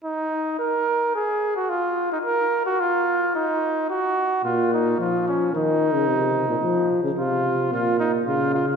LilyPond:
<<
  \new Staff \with { instrumentName = "Trumpet" } { \time 4/4 \key bes \phrygian \tempo 4 = 110 ees'4 bes'4 aes'8. ges'16 f'8. ees'16 | bes'8. ges'16 f'4 ees'4 ges'4 | f'8 ees'8 f'8 des'8 ees'2~ | ees'8 r8 f'4 f'8 ees'8 f'8 f'8 | }
  \new Staff \with { instrumentName = "Trombone" } { \clef bass \time 4/4 \key bes \phrygian r1 | r1 | bes,4 f4 ees8. des16 c8. bes,16 | f8. des16 c4 bes,4 des4 | }
>>